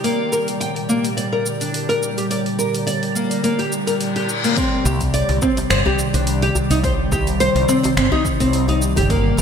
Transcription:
0.00 9.42 G3 medium
0.00 0.31 A#3 medium
0.00 9.42 G4 medium
0.00 9.42 D5 medium
0.04 4.57 A#2 medium
0.04 open hi-hat medium
0.04 shaker soft
0.28 4.57 D3 medium
0.32 0.47 A#4 medium
0.32 shaker medium
0.48 open hi-hat soft
0.48 shaker soft
0.60 0.75 G5 medium
0.60 open hi-hat medium
0.60 shaker soft
0.76 open hi-hat soft
0.89 1.04 A#3 medium
0.89 shaker medium
1.05 open hi-hat soft
1.05 shaker soft
1.17 1.26 D5 medium
1.17 open hi-hat soft
1.17 shaker soft
1.32 1.45 A#4 medium
1.46 shaker medium
1.61 1.88 D4 medium
1.61 open hi-hat soft
1.61 shaker soft
1.74 open hi-hat medium
1.74 shaker soft
1.89 2.02 A#4 medium
1.89 open hi-hat soft
2.03 shaker medium
2.18 2.25 G4 medium
2.18 open hi-hat soft
2.18 shaker soft
2.30 2.39 D5 medium
2.30 open hi-hat medium
2.30 shaker soft
2.46 open hi-hat soft
2.59 2.73 A#4 medium
2.59 shaker medium
2.75 open hi-hat soft
2.75 shaker soft
2.87 3.14 D5 medium
2.87 open hi-hat medium
2.87 shaker soft
3.03 open hi-hat soft
3.15 3.42 A#3 medium
3.15 shaker medium
3.31 open hi-hat soft
3.31 shaker soft
3.44 3.58 A#3 medium
3.44 open hi-hat medium
3.44 reverse cymbal medium
3.44 shaker soft
3.59 3.71 G4 medium
3.59 open hi-hat soft
3.72 shaker medium
3.87 3.95 A#4 medium
3.87 open hi-hat soft
3.87 shaker soft
4.01 open hi-hat medium
4.01 shaker soft
4.16 4.28 G4 medium
4.16 open hi-hat soft
4.29 shaker medium
4.44 4.57 A#3 medium
4.44 open hi-hat soft
4.44 shaker soft
4.57 9.10 C3 medium
4.57 4.84 C4 medium
4.57 kick loud
4.57 open hi-hat medium
4.57 shaker soft
4.85 5.21 C2 medium
4.85 9.10 D#3 medium
4.85 5.00 G4 medium
4.85 djembe slap medium
4.85 djembe tone medium
4.85 shaker medium
5.01 kick medium
5.01 open hi-hat soft
5.01 shaker soft
5.14 5.28 D5 medium
5.14 open hi-hat medium
5.14 shaker soft
5.29 5.38 C2 loud
5.29 open hi-hat soft
5.29 djembe slap medium
5.42 5.57 C4 medium
5.42 kick loud
5.42 djembe slap medium
5.42 shaker medium
5.57 open hi-hat soft
5.57 djembe slap soft
5.57 djembe tone medium
5.57 shaker soft
5.70 5.81 G1 loud
5.70 5.79 C5 medium
5.70 finger snap medium
5.70 open hi-hat medium
5.70 shaker soft
5.85 5.98 G4 medium
5.85 djembe bass medium
5.99 djembe tone medium
5.99 shaker medium
6.14 6.49 C2 medium
6.14 6.41 D4 medium
6.14 open hi-hat soft
6.14 shaker soft
6.27 open hi-hat medium
6.27 shaker soft
6.42 6.55 G4 loud
6.42 open hi-hat soft
6.55 djembe bass medium
6.55 shaker medium
6.70 7.05 C2 medium
6.70 6.78 D#4 medium
6.70 open hi-hat soft
6.70 shaker soft
6.84 6.93 C5 medium
6.84 kick loud
6.84 open hi-hat medium
6.84 shaker soft
7.12 7.48 C2 loud
7.12 7.27 G4 medium
7.12 kick loud
7.12 djembe slap medium
7.12 djembe tone medium
7.12 shaker medium
7.27 open hi-hat soft
7.27 shaker soft
7.40 7.67 C5 loud
7.40 open hi-hat medium
7.40 shaker soft
7.55 7.64 C2 loud
7.55 open hi-hat soft
7.55 djembe slap medium
7.68 7.95 C4 medium
7.68 djembe slap medium
7.68 shaker medium
7.83 open hi-hat soft
7.83 djembe slap soft
7.83 djembe tone medium
7.83 shaker soft
7.97 8.07 G1 loud
7.97 8.11 C4 medium
7.97 finger snap medium
7.97 open hi-hat medium
7.97 shaker soft
8.12 8.24 D#4 medium
8.12 djembe bass medium
8.25 kick loud
8.25 shaker medium
8.40 8.98 C2 medium
8.40 8.67 C4 medium
8.40 open hi-hat soft
8.40 shaker soft
8.53 open hi-hat medium
8.53 shaker soft
8.68 8.81 D#4 medium
8.68 open hi-hat soft
8.68 djembe tone medium
8.82 shaker medium
8.96 9.32 G1 medium
8.96 9.09 G4 medium
8.96 open hi-hat soft
8.96 djembe bass medium
8.96 shaker soft
9.10 9.42 A#2 medium
9.10 9.37 A#3 medium
9.10 kick loud
9.10 open hi-hat medium
9.10 shaker soft
9.24 9.42 D3 medium
9.37 9.42 G1 loud
9.37 9.42 A#4 medium
9.37 djembe slap soft
9.37 djembe tone medium
9.37 shaker medium

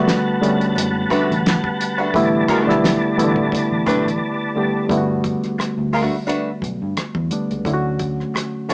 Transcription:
0.00 0.41 D3 loud
0.00 0.42 G3 medium
0.00 4.85 G3 medium
0.00 0.42 A3 medium
0.00 0.42 B3 loud
0.00 2.16 F#4 loud
0.00 4.85 B4 medium
0.00 2.11 F#5 medium
0.00 4.85 A5 medium
0.08 snare loud
0.08 closed hi-hat medium
0.41 1.45 D3 medium
0.41 1.45 G3 medium
0.41 1.46 A3 medium
0.41 1.46 B3 medium
0.41 1.46 C#4 medium
0.41 closed hi-hat medium
0.61 closed hi-hat soft
0.75 1.04 F#1 loud
0.75 muted hollow-body jazz guitar stroke soft
0.75 closed hi-hat loud
1.10 1.32 A3 medium
1.10 1.32 D4 medium
1.10 1.32 F#4 medium
1.10 1.32 B4 medium
1.10 kick medium
1.10 closed hi-hat medium
1.30 1.58 A1 medium
1.30 closed hi-hat soft
1.46 snare loud
1.46 closed hi-hat medium
1.64 kick medium
1.81 closed hi-hat medium
1.98 2.13 A3 soft
1.98 2.13 D4 medium
1.98 2.12 F#4 medium
1.98 2.12 B4 medium
2.14 2.42 A1 loud
2.14 2.53 D3 loud
2.14 2.53 G3 loud
2.14 2.54 A3 loud
2.14 2.54 B3 loud
2.14 2.54 E4 loud
2.14 4.87 D5 medium
2.14 kick loud
2.14 closed hi-hat medium
2.48 2.61 G#3 loud
2.48 2.62 C#4 medium
2.48 2.63 F#4 medium
2.48 2.63 A#4 loud
2.48 kick loud
2.48 closed hi-hat medium
2.61 2.80 A3 loud
2.61 2.81 D4 medium
2.61 2.81 G4 medium
2.61 2.81 B4 loud
2.67 2.96 B1 medium
2.67 3.06 D3 medium
2.67 3.06 G3 medium
2.67 3.06 A3 medium
2.67 3.06 B3 medium
2.67 3.07 E4 medium
2.67 snare soft
2.84 snare loud
2.84 closed hi-hat medium
3.17 3.33 A1 medium
3.17 3.24 C#3 medium
3.17 4.21 G3 medium
3.17 4.21 A3 medium
3.17 4.22 B3 medium
3.17 4.22 E4 medium
3.17 closed hi-hat medium
3.24 4.24 D3 medium
3.36 3.49 A2 loud
3.36 kick medium
3.52 muted hollow-body jazz guitar stroke soft
3.52 kick medium
3.52 closed hi-hat medium
3.71 3.84 A1 medium
3.86 4.02 B1 medium
3.86 4.07 A3 medium
3.86 4.08 D4 medium
3.86 4.08 G4 medium
3.86 4.08 B4 medium
3.86 kick medium
3.86 closed hi-hat medium
4.05 4.18 A1 medium
4.05 closed hi-hat soft
4.56 4.82 D3 medium
4.56 4.82 G3 medium
4.56 4.83 A3 medium
4.56 4.83 B3 medium
4.56 4.83 G4 medium
4.89 5.34 G1 medium
4.89 5.93 D3 medium
4.89 5.93 G3 medium
4.89 5.94 A3 medium
4.89 5.94 B3 medium
4.89 4.98 E4 medium
4.89 kick loud
4.89 closed hi-hat medium
4.97 5.97 F#4 loud
5.24 kick medium
5.24 closed hi-hat medium
5.44 muted fingered electric bass stroke soft
5.44 cross-stick soft
5.44 closed hi-hat soft
5.59 muted hollow-body jazz guitar stroke soft
5.59 muted fingered electric bass stroke soft
5.59 cross-stick medium
5.59 closed hi-hat medium
5.78 6.06 D2 medium
5.93 6.15 A3 medium
5.93 6.15 D4 medium
5.93 6.15 F#4 medium
5.93 6.15 B4 medium
5.93 open hi-hat soft
6.27 6.49 A3 medium
6.27 6.48 D4 medium
6.27 6.49 F#4 medium
6.27 6.49 B4 medium
6.27 closed hi-hat loud
6.62 6.78 B1 medium
6.62 kick medium
6.62 closed hi-hat medium
6.82 6.94 G2 medium
6.97 muted fingered electric bass stroke soft
6.97 cross-stick loud
6.97 closed hi-hat medium
7.15 7.28 E2 medium
7.15 kick medium
7.31 7.58 D3 medium
7.31 7.58 G3 medium
7.31 7.58 A3 medium
7.31 7.58 B3 medium
7.31 7.59 D4 medium
7.31 closed hi-hat medium
7.51 7.63 C#2 medium
7.51 closed hi-hat soft
7.65 8.22 D2 medium
7.65 8.44 D3 medium
7.65 8.44 F#3 medium
7.65 8.44 A3 medium
7.65 8.45 C#4 medium
7.65 7.73 E4 medium
7.65 kick loud
7.65 closed hi-hat medium
7.74 8.48 F#4 loud
7.99 kick medium
7.99 closed hi-hat medium
8.20 cross-stick soft
8.34 muted hollow-body jazz guitar stroke soft
8.34 cross-stick medium
8.34 closed hi-hat medium
8.69 8.74 D3 medium
8.69 8.74 F#3 medium
8.69 8.74 A3 medium
8.69 8.74 C#4 medium
8.69 8.74 D4 medium
8.69 8.74 F#4 medium
8.69 8.74 C#5 medium
8.69 muted fingered electric bass stroke soft
8.69 closed hi-hat medium

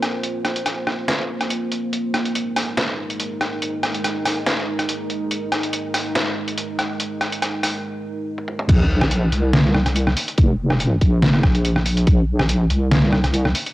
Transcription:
0.00 1.89 A#3 medium
0.00 1.89 F4 medium
0.00 1.89 C5 medium
0.00 cross-stick medium
0.00 closed hi-hat medium
0.24 closed hi-hat medium
0.45 cross-stick medium
0.45 closed hi-hat medium
0.56 closed hi-hat medium
0.66 cross-stick medium
0.66 closed hi-hat medium
0.87 cross-stick medium
1.08 snare loud
1.08 closed hi-hat medium
1.41 cross-stick medium
1.41 closed hi-hat medium
1.50 closed hi-hat medium
1.72 closed hi-hat medium
1.93 8.65 G#3 medium
1.93 8.65 D#4 medium
1.93 8.65 A#4 medium
1.93 closed hi-hat medium
2.14 cross-stick medium
2.14 closed hi-hat soft
2.25 closed hi-hat soft
2.35 closed hi-hat medium
2.56 cross-stick medium
2.56 open hi-hat medium
2.77 snare loud
2.77 closed hi-hat medium
3.10 closed hi-hat soft
3.20 closed hi-hat medium
3.41 cross-stick medium
3.41 closed hi-hat soft
3.62 closed hi-hat medium
3.83 cross-stick medium
3.83 closed hi-hat soft
3.94 closed hi-hat medium
4.04 cross-stick medium
4.04 closed hi-hat medium
4.25 cross-stick medium
4.25 open hi-hat medium
4.46 snare loud
4.46 closed hi-hat medium
4.79 cross-stick medium
4.79 closed hi-hat medium
4.89 closed hi-hat medium
5.10 closed hi-hat soft
5.31 closed hi-hat medium
5.52 cross-stick medium
5.52 closed hi-hat medium
5.63 closed hi-hat medium
5.73 closed hi-hat medium
5.94 cross-stick medium
5.94 open hi-hat medium
6.15 snare loud
6.15 closed hi-hat medium
6.48 closed hi-hat medium
6.58 closed hi-hat medium
6.79 cross-stick medium
6.79 closed hi-hat medium
7.00 closed hi-hat medium
7.21 cross-stick medium
7.21 closed hi-hat medium
7.32 closed hi-hat medium
7.42 cross-stick medium
7.42 closed hi-hat medium
7.63 cross-stick medium
7.63 open hi-hat medium
8.38 high tom medium
8.48 mid tom medium
8.59 mid tom medium
8.69 9.31 A#1 loud
8.69 kick loud
8.69 closed hi-hat medium
8.69 crash loud
9.01 cross-stick medium
9.11 closed hi-hat medium
9.32 10.15 C2 loud
9.32 closed hi-hat medium
9.53 snare loud
9.53 closed hi-hat medium
9.75 cross-stick medium
9.86 cross-stick medium
9.86 closed hi-hat medium
9.96 closed hi-hat medium
10.07 cross-stick medium
10.17 open hi-hat loud
10.28 closed hi-hat medium
10.38 11.00 F1 loud
10.38 kick loud
10.38 closed hi-hat medium
10.70 cross-stick medium
10.80 closed hi-hat medium
11.01 11.42 A#1 loud
11.01 kick medium
11.01 closed hi-hat medium
11.22 snare loud
11.22 closed hi-hat medium
11.34 cross-stick soft
11.43 12.05 A#1 loud
11.43 kick medium
11.43 cross-stick medium
11.55 closed hi-hat medium
11.65 closed hi-hat medium
11.76 cross-stick medium
11.86 open hi-hat medium
11.97 closed hi-hat medium
12.07 12.69 A#1 loud
12.07 kick loud
12.07 closed hi-hat medium
12.39 cross-stick medium
12.49 closed hi-hat medium
12.70 13.53 C2 loud
12.70 closed hi-hat medium
12.91 snare loud
12.91 closed hi-hat medium
13.12 cross-stick medium
13.24 cross-stick medium
13.24 closed hi-hat medium
13.34 closed hi-hat medium
13.45 cross-stick medium
13.55 open hi-hat medium
13.66 closed hi-hat medium

